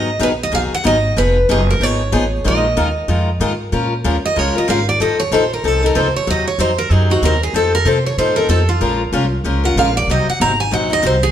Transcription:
Already playing: G#1 D#5
0.19 A#1 D#3 F#3 B3 D#4 G#4 B4
0.43 D#5
0.52 B1 D#3 F#3 B3 D#4 G#4 F5
0.72 F#5, muted upright bass stroke
0.84 G#1 D#3 F#3 B3 D#4 G#4 D#5
1.17 F1 F3 B3 D#4 G#4 B4
1.49 F#1 F3 B3 D#4 G#4
1.71 A#4
1.80 G#1 F3 B3 D#4 G#4 C#5
2.12 A1 F3 B3 D#4 G#4
2.44 A#1 D#3 G#3 D#4 F4 A#4 D#5
2.77 D#2 D#3 G#3 D#4 F4 A#4
3.08 F2 D#3 G#3 D#4 F4 A#4
3.40 G#2 D#3 G#3 D#4 F4 A#4
3.72 A#2 F3 G#3 C#4 F4 A#4
4.04 D#2 F3 G#3 C#4 F4 A#4
4.24 D#5, muted upright bass stroke
4.36 C#2 F3 G#3 C#4 F4 A#4 C#5
4.55 C#4 F4 A#4 D#5, muted upright bass stroke
4.68 G#1 F3 G#3 C#4 F4 A#4 F5
4.89 D5
5.00 A1 F3 C4 D#4 A4 D#5
5.20 C#5
5.31 A#1 F3 C4 D#4 A4 C5
5.53 A#4
5.64 C2 F3 C4 D#4 A4
5.82 C4 D#4 A4 A#4
5.95 C#2 F3 C4 D#4 A4 C5
6.15 C#5, muted upright bass stroke
6.27 D#2 C3 F#3 C4 D#4 D#5
6.48 C#5
6.58 F2 C3 F#3 C4 D#4 C5
6.78 A#4
6.90 F#2 C3 F#3 C4 D#4 G#4
7.10 F#3 C4 D#4 F#4
7.22 D#2 C3 F#3 C4 D#4 A#4
7.43 G#4
7.53 F2 F3 C4 D#4 A4
7.75 A#4
7.85 C3 F3 C4 D#4 A4 C5
8.06 C#5
8.17 A2 F3 C4 D#4 A4 C5
8.36 C4 D#4 A4 A#4
8.49 F2 F3 C4 D#4 A4
8.69 F4
8.81 A#1 F3 G#3 C#4 F4 A#4
9.12 C2 F3 G#3 C#4 F4 A#4
9.44 C#2 F3 G#3 C#4 F4 A#4
9.64 C#4 F4 A#4 F#5
9.76 A#1 F3 G#3 C#4 F4 A#4 F5
9.97 D5
10.07 C2 C3 F#3 C4 D#4
10.11 D#5
10.27 F#5, muted upright bass stroke
10.40 G#1 C3 F#3 C4 D#4 A#5
10.60 G#5
10.71 A#1 C3 F#3 C4 D#4 F#5
10.90 F#3 C4 D#4 D#5
11.02 C2 C3 F#3 C4 D#4
11.06 C5
11.23 G#4

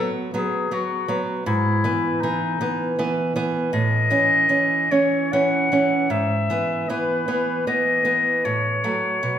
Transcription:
Already playing: F#3 B3 A4
0.34 F#3 B3 G#4
0.71 F#3 B3 F#4
1.08 F#3 B3
1.46 G#2 E4
1.84 E3 B3
2.21 E3 B3 D#4
2.61 E3 B3
2.99 E3 B3
3.36 E3 B3
3.73 A2 D#5
4.10 E3 C#4
4.49 E3 C#4
4.91 E3 C#4 C#5
5.32 E3 C#4 F#5
5.72 E3 C#4
6.10 G#2 E5
6.50 E3 B3
6.89 E3 B3 B4
7.28 E3 B3
7.67 E3 B3 D#5
8.05 E3 B3
8.44 A2 C#5
8.84 F#3 A3
9.23 B2

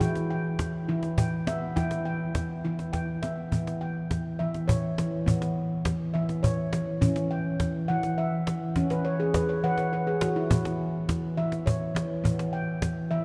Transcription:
0.00 E3 E4 G5, cajon bass
0.15 cajon slap
0.30 G5
0.45 cajon slap
0.59 cajon bass, cajon slap
0.88 E3 E4, cajon slap
1.03 cajon slap
1.18 G5, cajon bass
1.32 cajon slap
1.47 B3 E5, cajon slap
1.76 E3 E4 G5, cajon bass, cajon slap
1.91 cajon slap
2.05 G5
2.35 cajon bass, cajon slap
2.64 E3 E4, cajon slap
2.79 cajon slap
2.93 G5, cajon bass, cajon slap
3.22 B3 E5, cajon slap
3.38 cajon slap
3.52 E3 B3, cajon bass
3.67 cajon slap
3.81 G5
4.11 E3, cajon bass, cajon slap
4.39 E3 E5
4.54 cajon slap
4.68 C#5, cajon bass
4.98 E3, cajon slap
5.26 E3 B3, cajon bass
5.42 cajon slap
5.85 E3, cajon bass, cajon slap
6.14 E3 E5
6.29 cajon slap
6.43 C#5, cajon bass
6.73 E3, cajon slap
7.01 E3 C#4, cajon bass
7.16 cajon slap
7.31 G5
7.60 E3, cajon bass, cajon slap
7.88 E3 F#5
8.03 cajon slap
8.18 E5
8.47 E3, cajon slap
8.76 E3 C#4, cajon bass, cajon slap
8.90 B4, cajon slap
9.05 C#5
9.20 G#4
9.34 E3 B4, cajon bass, cajon slap
9.49 C#5
9.63 E3 B4 F#5, cajon slap
9.78 C#5, cajon slap
9.93 B4
10.07 G#4
10.21 E3 F#4, cajon slap
10.36 E4
10.50 E3 B3, cajon bass
10.65 cajon slap
11.09 E3, cajon bass, cajon slap
11.37 E3 E5
11.52 cajon slap
11.66 C#5, cajon bass
11.95 E3, cajon slap
12.24 E3 B3, cajon bass
12.39 cajon slap
12.53 G5
12.82 E3, cajon bass, cajon slap
13.11 E3 E5

